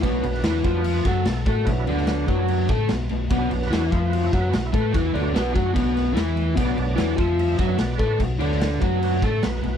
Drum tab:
CC |x-x-x-x-x-x-x-x-|x-x-x-x-x-x-x-x-|x-x-x-x-x-x-x-x-|x-x-x-x-x-x-x-x-|
SD |---oo-----o-o---|---oo-------o---|---oo-------o---|----o-----o-o---|
BD |o-----o---o---o-|o-----o---o-----|o-----o---o---o-|o-----o-o-------|

CC |x-x-x-x-x-x-x-x-|x-x-x-x-x-x-x-x-|
SD |----o-----o-o---|---oo-------o---|
BD |o-----o---o---o-|o-----o---o-----|